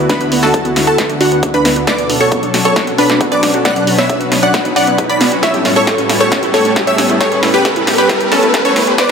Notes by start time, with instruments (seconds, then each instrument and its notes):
Already playing: analog synth pad D2 D3 B3 E4 F#4, riser
0.09 synth pluck D4 B4, synth arpeggio sound D4, supersaw synth B5, kick, snare, closed hi-hat
0.21 synth arpeggio sound F#4, closed hi-hat
0.32 synth arpeggio sound B3, open hi-hat
0.43 synth arpeggio sound D4, synth pluck F#4 A4, supersaw synth A5, snare
0.54 synth arpeggio sound F#4, kick, closed hi-hat
0.65 synth arpeggio sound B3, closed hi-hat
0.76 synth arpeggio sound D4, snare, open hi-hat
0.87 synth pluck F#4 A4, synth arpeggio sound F#4, supersaw synth A5, closed hi-hat
0.98 synth arpeggio sound B3, kick, snare, closed hi-hat
1.10 synth arpeggio sound D4, closed hi-hat
1.21 synth pluck D4 F#4, synth arpeggio sound F#4, supersaw synth F#5, open hi-hat
1.32 synth arpeggio sound B3, closed hi-hat
1.43 synth arpeggio sound D4, kick, closed hi-hat
1.54 synth pluck D4 B4, synth arpeggio sound F#4, supersaw synth B5, closed hi-hat
1.65 synth arpeggio sound B3, snare, open hi-hat
1.76 synth arpeggio sound D4, closed hi-hat
1.87 analog synth pad B2 F#3 C#4 D4 A4, synth arpeggio sound F#4, synth pluck B4 D5, supersaw synth D6, kick, snare, closed hi-hat
1.98 synth arpeggio sound B3, closed hi-hat
2.10 synth arpeggio sound D4, open hi-hat
2.21 synth arpeggio sound F#4, synth pluck A4 C#5, supersaw synth C#6
2.32 synth arpeggio sound B3, kick, closed hi-hat
2.43 synth arpeggio sound D4, closed hi-hat
2.54 synth arpeggio sound F#4, snare, open hi-hat
2.65 synth arpeggio sound B3, synth pluck A4 C#5, supersaw synth C#6, closed hi-hat
2.76 synth arpeggio sound D4, kick, snare, closed hi-hat
2.87 synth arpeggio sound F#4, closed hi-hat
2.98 synth arpeggio sound B3, synth pluck D4 B4, supersaw synth B5, open hi-hat
3.10 synth arpeggio sound D4, snare, closed hi-hat
3.21 synth arpeggio sound F#4, kick, closed hi-hat
3.32 synth arpeggio sound B3, synth pluck B4 D5, supersaw synth D6, closed hi-hat
3.43 synth arpeggio sound D4, snare, open hi-hat
3.54 synth arpeggio sound F#4, closed hi-hat
3.65 synth arpeggio sound B3, analog synth pad B4, synth pluck D5 F#5, supersaw synth F#6, kick, snare, closed hi-hat
3.76 synth arpeggio sound D4, closed hi-hat
3.87 synth arpeggio sound F#4, open hi-hat
3.98 synth arpeggio sound B3, synth pluck C#5 E5, supersaw synth E6, snare
4.09 synth arpeggio sound D4, kick, closed hi-hat
4.21 synth arpeggio sound F#4, closed hi-hat
4.32 synth arpeggio sound B3, snare, open hi-hat
4.43 synth arpeggio sound D4, synth pluck D5 F#5, supersaw synth F#6, closed hi-hat
4.54 synth arpeggio sound F#4, kick, snare, closed hi-hat
4.65 synth arpeggio sound B3, closed hi-hat
4.76 synth pluck D5 F#5, synth arpeggio sound D5, supersaw synth F#6, open hi-hat
4.87 synth arpeggio sound B3, closed hi-hat
4.98 synth arpeggio sound B4, kick, closed hi-hat
5.09 synth pluck D5 B5, synth arpeggio sound D5, supersaw synth B6, closed hi-hat
5.21 synth arpeggio sound B3, snare, open hi-hat
5.32 synth arpeggio sound F#4, closed hi-hat
5.43 analog synth pad A2 G3 B3 A4, synth arpeggio sound E4, synth pluck C#5 E5, supersaw synth E6, kick, snare, closed hi-hat
5.54 synth arpeggio sound G4, closed hi-hat
5.65 synth arpeggio sound C#4, snare, open hi-hat
5.76 synth arpeggio sound E4, synth pluck A4 C#5, supersaw synth C#6
5.87 synth arpeggio sound G4, kick, snare, closed hi-hat
5.98 synth arpeggio sound C#4, closed hi-hat
6.09 synth arpeggio sound E4, snare, open hi-hat
6.20 synth arpeggio sound G4, synth pluck A4 C#5, supersaw synth C#6, closed hi-hat
6.32 synth arpeggio sound C#4, kick, snare, closed hi-hat
6.43 synth arpeggio sound E4, closed hi-hat
6.54 synth arpeggio sound G4, synth pluck A4 C#5, supersaw synth C#6, snare, open hi-hat
6.65 synth arpeggio sound C#4, closed hi-hat
6.76 synth arpeggio sound E4, kick, snare, closed hi-hat
6.87 synth arpeggio sound G4, synth pluck C#5 E5, supersaw synth E6, closed hi-hat
6.98 synth arpeggio sound C#4, snare, open hi-hat
7.10 synth arpeggio sound E4, closed hi-hat
7.21 synth arpeggio sound G4, synth pluck A4 C#5, analog synth pad B4, supersaw synth C#6, kick, snare, closed hi-hat
7.32 synth arpeggio sound C#4, closed hi-hat
7.43 synth arpeggio sound E4, snare, open hi-hat
7.54 synth pluck G4 B4, synth arpeggio sound G4, supersaw synth B5
7.65 synth arpeggio sound C#4, kick, snare, closed hi-hat
7.76 synth arpeggio sound E4, closed hi-hat
7.87 synth arpeggio sound G4, snare, open hi-hat
7.98 synth arpeggio sound C#4, synth pluck G4 B4, supersaw synth B5, closed hi-hat
8.09 synth arpeggio sound E4, kick, snare, closed hi-hat
8.21 synth arpeggio sound G4, closed hi-hat
8.32 synth pluck C#4 A4, synth arpeggio sound C#4, supersaw synth A5, snare, open hi-hat
8.43 synth arpeggio sound E4, closed hi-hat
8.54 synth arpeggio sound G4, kick, snare, closed hi-hat
8.65 synth arpeggio sound C#4, synth pluck A4 C#5, supersaw synth C#6, closed hi-hat
8.76 synth arpeggio sound E4, snare, open hi-hat
8.87 synth arpeggio sound G4, closed hi-hat
8.98 analog synth pad G2 G3 D4 A4, synth arpeggio sound B3, synth pluck B4 D5, supersaw synth D6, kick, snare, closed hi-hat